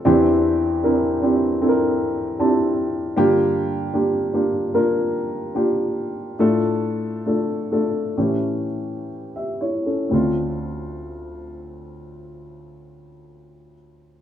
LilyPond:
<<
  \new Staff \with { instrumentName = "Upright piano" } { \time 4/4 \key d \minor \tempo 4 = 71 << { r2. a''4 | r1 | r2. r16 <g' e''>16 <e' cis''>16 <cis' a'>16~ | <cis' a'>16 r2. r8. | } \\ { <c' d' e' g'>4 <c' d' e' bes'>8 <c' d' e' g'>8 <c' d' e' a' bes'>4 <c' d' e' g'>4 | <bes d' f' g'>4 <bes d' f' g'>8 <bes d' f' g'>8 <bes d' f' bes'>4 <bes d' f' g'>4 | <a d' f' a'>4 <a d' f' a'>8 <a d' f' a'>8 <a cis' e' g'>4 r4 | <a c' d' f'>1 | } >> }
  \new Staff \with { instrumentName = "Upright piano" } { \clef bass \time 4/4 \key d \minor <e, e>1 | <g, d>1 | a,2 <a, e>2 | d,1 | }
>>